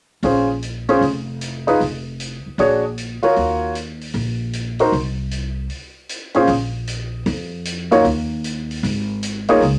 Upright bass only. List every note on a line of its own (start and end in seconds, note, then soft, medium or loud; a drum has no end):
0.23 0.97 A#1 medium
1.01 1.76 F1 medium
1.80 2.41 F1 medium
2.46 muted upright bass stroke soft
2.58 3.19 A#1 medium
3.24 muted upright bass stroke soft
3.37 4.11 D#2 medium
4.14 4.88 A#1 medium
4.92 5.67 C2 medium
6.48 7.22 A#1 medium
7.26 8.01 F2 medium
8.04 8.79 D#2 medium
8.83 9.57 G#1 medium
9.61 9.79 C#2 medium